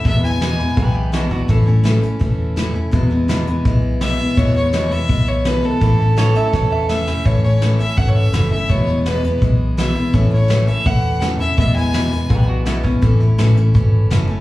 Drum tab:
HH |x-xxx-x-|x-xxx-x-|x-xxx-x-|x-xxx-x-|
SD |--o---o-|--o---o-|--o---o-|--o---o-|
BD |o---o--o|o---o---|o---o---|o---o---|

HH |x-xx----|x-xxx-x-|x-xxx-x-|x-xxx-x-|
SD |--o-o-oo|--o---o-|--o---o-|--o---o-|
BD |o---o---|o---o---|o---o---|o---o---|

HH |x-xxx-x-|x-xxx-x-|
SD |--o---o-|--o---o-|
BD |o---o--o|o---o---|